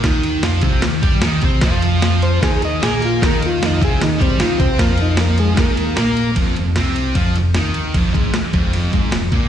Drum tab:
CC |x-------|--------|--------|--------|
RD |-xxxxxxx|xxxxxxxx|xxxxxxxx|xxxxxxxx|
SD |o-o-o-o-|o-o-o-o-|o-o-o-o-|o-o-o-o-|
BD |o--o-o-o|o---o---|o--o-o-o|o---o---|

CC |--------|--------|
RD |xxxxxxxx|xxxxxxxx|
SD |--o---o-|--o---o-|
BD |o---o---|oo-o-o-o|